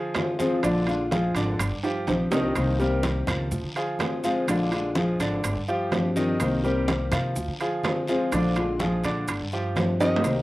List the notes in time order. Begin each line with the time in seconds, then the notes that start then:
Already playing: D3 F3 F4 G#4
0.14 D3 G#3 C4 F4, high conga, high timbale, low timbale, short guiro, maracas
0.39 F3 G#3 C4 F4 G#4, high conga, short guiro, maracas
0.63 A#1 D3 F3 G#3 D4 F4 D5, high conga, high timbale, long guiro, maracas
0.87 G#3 D4 F4, high conga, high timbale, maracas
1.11 F3 G#3 D4 F4 G#4, high conga, low timbale, short guiro, maracas
1.35 G#1 D3 D4 D5, high conga, high timbale, short guiro, maracas
1.59 G1, muted steel-string acoustic guitar stroke, high timbale, long guiro, maracas
1.71 G2
1.83 F3 F4 G4, high conga, high timbale, maracas
2.07 A#1 F3 C4 D4 G4, high conga, high timbale, short guiro, maracas
2.31 C2 D#3 F3 C4 D4 D#4 G4 D#5, low timbale, short guiro, maracas
2.55 C2 C3 D#3 A#3 C4 G4, high conga, high timbale, long guiro, maracas
2.79 D#3 G3 A#3 C4 G4 A#4, high conga, maracas
3.03 D#3 A#3 C4 G4, high conga, high timbale, low timbale, short guiro, maracas
3.27 C#2 F3 F4, high conga, low conga, high timbale, short guiro, maracas
3.51 D2, muted steel-string acoustic guitar stroke, high conga, low conga, long guiro, maracas
3.62 D3
3.75 F3 F4 G#4, high conga, high timbale, maracas
3.99 D3 G#3 C4 F4, high conga, high timbale, low timbale, short guiro, maracas
4.24 F3 G#3 C4 F4 G#4, short guiro, maracas
4.47 A#1 D3 F3 G#3 D4 F4 D5, high conga, high timbale, long guiro, maracas
4.71 G#3 D4 F4, high conga, high timbale, maracas
4.95 F3 G#3 D4 F4 G#4, high conga, low timbale, short guiro, maracas
5.19 G#1 D3 D4 D5, high conga, high timbale, short guiro, maracas
5.44 G1, muted steel-string acoustic guitar stroke, high conga, high timbale, long guiro, maracas
5.56 G2
5.68 F3 F4 G4, high conga, maracas
5.92 F3 C4 D4 G4, high conga, high timbale, low timbale, short guiro, maracas
6.16 D#3 F3 C4 D4 D#4 G4 D#5, high conga, short guiro, maracas
6.39 C2 C3 D#3 A#3 C4 G4, high conga, high timbale, long guiro, maracas
6.63 D#3 G3 A#3 C4 G4 A#4, high conga, maracas
6.88 D#3 A#3 C4 G4, high conga, high timbale, low timbale, short guiro, maracas
7.12 C3 F3 F4, high conga, low conga, high timbale, short guiro, maracas
7.35 D2, muted steel-string acoustic guitar stroke, high conga, long guiro, maracas
7.48 D3
7.60 F3 F4 G#4, high conga, high timbale, maracas
7.83 D3 G#3 C4 F4, high conga, high timbale, low timbale, short guiro, maracas
8.07 F3 G#3 C4 F4 G#4, short guiro, maracas
8.31 A#1 D3 F3 G#3 D4 F4 D5, high conga, high timbale, long guiro, maracas
8.56 G#3 D4 F4, high conga, high timbale, maracas
8.79 F3 G#3 D4 F4 G#4, high conga, low timbale, short guiro, maracas
9.04 A#2 D3 D4 D5, high conga, high timbale, short guiro, maracas
9.28 G1, muted steel-string acoustic guitar stroke, high conga, high timbale, long guiro, maracas
9.40 G2
9.52 F3 F4 G4, high conga, maracas
9.76 F3 C4 D4 G4, high conga, high timbale, low timbale, short guiro, maracas
10.00 D#3 F3 C4 D4 D#4 G4 D#5, high conga, high timbale, short guiro, maracas
10.16 low timbale
10.23 C2 C3 D#3 A#3 C4 G4, high conga, high timbale, long guiro, maracas